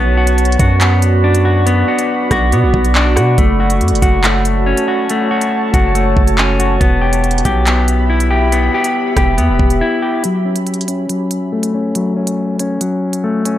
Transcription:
Already playing: 808-style bass B1, clean electric guitar B3, ambient pad F#4 D5 B5
0.17 clean electric guitar F#4
0.27 closed hi-hat
0.38 closed hi-hat
0.45 closed hi-hat
0.52 closed hi-hat
0.59 808-style bass F#2, clean electric guitar F#4, kick, closed hi-hat
0.81 clean electric guitar B3, clap, closed hi-hat
1.02 closed hi-hat
1.24 clean electric guitar D4
1.35 closed hi-hat
1.45 clean electric guitar F#4
1.66 clean electric guitar B3, closed hi-hat
1.88 clean electric guitar F#4
1.99 closed hi-hat
2.31 808-style bass B1, clean electric guitar F#4, kick, cross-stick, closed hi-hat
2.52 808-style bass B2, clean electric guitar B3, closed hi-hat
2.63 808-style bass B1
2.74 808-style bass B1, kick
2.85 closed hi-hat
2.95 clean electric guitar D4, clap
3.16 808-style bass B2, clean electric guitar F#4, cross-stick, closed hi-hat
3.38 808-style bass F#1, clean electric guitar A3, ambient pad C#5 A5, kick, closed hi-hat
3.60 clean electric guitar F#4
3.70 closed hi-hat
3.81 808-style bass F#2, closed hi-hat
3.88 808-style bass F#1, closed hi-hat
3.95 closed hi-hat
4.02 808-style bass F#1, clean electric guitar F#4, kick, closed hi-hat
4.24 clean electric guitar A3, clap, closed hi-hat
4.45 closed hi-hat
4.66 clean electric guitar C#4
4.77 closed hi-hat
4.88 clean electric guitar F#4
5.09 clean electric guitar A3, closed hi-hat
5.31 clean electric guitar F#4
5.41 closed hi-hat
5.74 808-style bass F#1, clean electric guitar F#4, kick, closed hi-hat
5.95 clean electric guitar A3, closed hi-hat
6.17 808-style bass F#1, kick
6.27 closed hi-hat
6.38 clean electric guitar C#4, clap
6.59 clean electric guitar F#4, closed hi-hat
6.81 808-style bass E1, clean electric guitar B3, ambient pad G4 E5 B5, kick, closed hi-hat
7.02 clean electric guitar G4
7.13 closed hi-hat
7.24 closed hi-hat
7.31 closed hi-hat
7.38 closed hi-hat
7.45 808-style bass B1, clean electric guitar G4, kick, closed hi-hat
7.67 clean electric guitar B3, clap, closed hi-hat
7.88 closed hi-hat
8.10 clean electric guitar E4
8.20 closed hi-hat
8.31 clean electric guitar G4
8.52 clean electric guitar B3, closed hi-hat
8.74 clean electric guitar G4
8.84 closed hi-hat
9.17 808-style bass E1, clean electric guitar G4, kick, cross-stick, closed hi-hat
9.38 808-style bass E2, clean electric guitar B3, closed hi-hat
9.49 808-style bass E1
9.59 808-style bass E1, kick
9.70 closed hi-hat
9.81 clean electric guitar E4
10.02 clean electric guitar G4
10.24 clean electric guitar F#3, closed hi-hat
10.45 clean electric guitar C#4
10.56 closed hi-hat
10.67 closed hi-hat
10.74 closed hi-hat
10.81 closed hi-hat
10.88 clean electric guitar C#4, closed hi-hat
11.09 clean electric guitar F#3, closed hi-hat
11.31 closed hi-hat
11.52 clean electric guitar A3
11.63 closed hi-hat
11.74 clean electric guitar C#4
11.95 clean electric guitar F#3, closed hi-hat
12.17 clean electric guitar C#4
12.27 closed hi-hat
12.59 clean electric guitar C#4, closed hi-hat
12.81 clean electric guitar F#3, closed hi-hat
13.13 closed hi-hat
13.24 clean electric guitar A3
13.45 clean electric guitar C#4, closed hi-hat

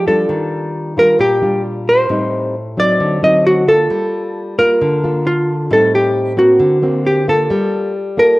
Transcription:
Already playing: nylon-string guitar F3
0.07 nylon-string guitar G3 D4 F4, hollow-body jazz guitar A4
0.29 nylon-string guitar D#3
0.97 nylon-string guitar G3 D4 F4, hollow-body jazz guitar A#4
1.19 nylon-string guitar A#2, hollow-body jazz guitar G4
1.42 nylon-string guitar G3 D4 F4
1.89 hollow-body jazz guitar C5
2.09 nylon-string guitar A2 G3 C4 D#4
2.77 nylon-string guitar F#3 C4 D#4, hollow-body jazz guitar D5
3.00 nylon-string guitar D3
3.22 nylon-string guitar F#3 C4 D#4, hollow-body jazz guitar D#5
3.47 hollow-body jazz guitar F#4
3.68 nylon-string guitar A#3 F4 A4, hollow-body jazz guitar A4
3.90 nylon-string guitar G3
4.58 nylon-string guitar A#3 F4, hollow-body jazz guitar A#4
4.81 nylon-string guitar D3
5.03 nylon-string guitar A#3 F4 A4
5.27 hollow-body jazz guitar F4
5.71 nylon-string guitar A2 G3 C4 D#4, hollow-body jazz guitar A4
5.95 hollow-body jazz guitar G4
6.37 nylon-string guitar A#3 C4 F#4, hollow-body jazz guitar F#4
6.60 nylon-string guitar D3
6.82 nylon-string guitar A#3 C4 F#4
7.06 hollow-body jazz guitar G4
7.28 nylon-string guitar A#3 F4 A4, hollow-body jazz guitar A4
7.50 nylon-string guitar G3
8.17 nylon-string guitar A#3 F4 A4, hollow-body jazz guitar A#4

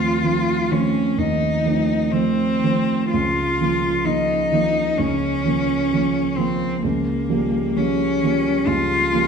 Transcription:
Already playing: grand piano D#2 F3 A3 C4, cello F4
0.24 grand piano F3 A3 C4
0.72 grand piano F3 A3 C4, cello C#4
1.18 grand piano D#2, cello D#4
1.66 grand piano F3 A3 C4
2.12 grand piano F3 A3 C4, cello C4
2.64 grand piano F3 A3 C4
3.11 grand piano C#2, cello F4
3.61 grand piano F3 A#3
4.05 grand piano F3 A#3, cello D#4
4.52 grand piano F3 A#3
4.98 grand piano C#2, cello C#4
5.45 grand piano F3 A#3
5.93 grand piano F3 A#3
6.37 grand piano F3 A#3, cello C4
6.83 grand piano C#2, cello A#3
7.29 grand piano F3 G3 A#3
7.76 grand piano F3 G3 A#3, cello C#4
8.23 grand piano F3 G3 A#3
8.67 grand piano C#2, cello F4
9.13 grand piano F3 G3 A#3

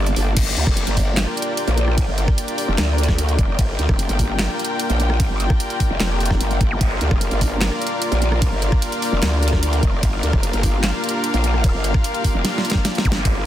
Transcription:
Already playing: wobble bass G1, supersaw synth A#3 D4 G4 D5 A5
0.06 closed hi-hat
0.16 wobble bass G1, open hi-hat
0.37 wobble bass G1, supersaw synth A#3 D4 G4 D5 G5, string section F4, kick, closed hi-hat, crash, ride
0.57 wobble bass D2, string section A#4, closed hi-hat
0.67 wobble bass F1, kick, cross-stick
0.74 string section D5, closed hi-hat, ride
0.87 wobble bass G1, closed hi-hat
0.97 kick, open hi-hat
1.17 snare, clap, closed hi-hat, ride
1.27 cross-stick
1.37 closed hi-hat
1.42 closed hi-hat
1.57 closed hi-hat, ride
1.68 wobble bass A#1, closed hi-hat
1.78 closed hi-hat
1.88 cross-stick
1.98 kick, closed hi-hat, ride
2.08 wobble bass G1
2.18 closed hi-hat
2.28 kick, cross-stick
2.38 closed hi-hat, ride
2.48 closed hi-hat
2.58 open hi-hat
2.68 wobble bass F1
2.78 wobble bass D2, cross-stick, snare, clap, closed hi-hat, ride
2.98 closed hi-hat
3.03 closed hi-hat
3.08 kick, cross-stick, snare
3.18 closed hi-hat, ride
3.29 closed hi-hat
3.39 wobble bass F1, kick, closed hi-hat
3.59 wobble bass G1, kick, closed hi-hat, ride
3.79 wobble bass D2, closed hi-hat
3.89 wobble bass F1, kick, cross-stick
3.96 string section G5, closed hi-hat, ride
4.09 wobble bass G1, closed hi-hat
4.19 kick, open hi-hat
4.39 snare, clap, closed hi-hat, ride
4.49 cross-stick
4.59 closed hi-hat
4.64 closed hi-hat
4.80 closed hi-hat, ride
4.90 wobble bass A#1, closed hi-hat
5.00 closed hi-hat
5.10 cross-stick
5.20 kick, closed hi-hat, ride
5.30 wobble bass G1
5.40 closed hi-hat
5.50 kick, cross-stick
5.60 closed hi-hat, ride
5.70 closed hi-hat
5.80 kick, open hi-hat
5.90 wobble bass F1
6.00 wobble bass F1, cross-stick, snare, clap, closed hi-hat, ride
6.20 closed hi-hat
6.25 closed hi-hat
6.31 kick, cross-stick, snare
6.41 wobble bass G1, closed hi-hat, ride
6.51 closed hi-hat
6.61 wobble bass G1, kick, closed hi-hat
6.71 zap
6.81 wobble bass G1, supersaw synth F5, kick, closed hi-hat, ride
7.01 wobble bass D2, closed hi-hat
7.11 wobble bass F1, kick, cross-stick
7.18 string section D5, closed hi-hat, ride
7.31 wobble bass G1, closed hi-hat
7.41 kick, open hi-hat
7.61 snare, clap, closed hi-hat, ride
7.72 cross-stick
7.82 closed hi-hat
7.87 closed hi-hat
8.02 closed hi-hat, ride
8.12 wobble bass A#1, closed hi-hat
8.22 closed hi-hat
8.32 cross-stick
8.42 kick, closed hi-hat, ride
8.52 wobble bass G1
8.62 closed hi-hat
8.72 kick, cross-stick
8.82 closed hi-hat, ride
8.92 closed hi-hat
9.02 open hi-hat
9.12 wobble bass F1
9.22 wobble bass D2, cross-stick, snare, clap, closed hi-hat, ride
9.43 closed hi-hat
9.48 closed hi-hat
9.53 kick, cross-stick, snare
9.63 closed hi-hat, ride
9.73 closed hi-hat
9.83 wobble bass F1, kick, closed hi-hat
10.03 wobble bass G1, kick, closed hi-hat, ride
10.23 wobble bass D2, closed hi-hat
10.33 wobble bass F1, kick, cross-stick
10.40 string section F5, closed hi-hat, ride
10.53 wobble bass G1, closed hi-hat
10.63 kick, open hi-hat
10.84 snare, clap, closed hi-hat, ride
10.94 cross-stick
11.04 closed hi-hat
11.09 closed hi-hat
11.24 closed hi-hat, ride
11.34 wobble bass A#1, closed hi-hat
11.44 closed hi-hat
11.54 cross-stick
11.64 kick, closed hi-hat, ride
11.74 wobble bass G1
11.84 closed hi-hat
11.94 kick, cross-stick
12.04 closed hi-hat, ride
12.14 closed hi-hat
12.24 kick, open hi-hat
12.35 wobble bass F1
12.45 snare, closed hi-hat, ride
12.58 snare
12.65 closed hi-hat
12.70 snare, closed hi-hat
12.75 kick
12.85 snare, closed hi-hat, ride
12.95 snare, closed hi-hat
13.05 wobble bass G1, kick, closed hi-hat, zap
13.12 snare
13.25 wobble bass G1, supersaw synth G5, kick, closed hi-hat, ride

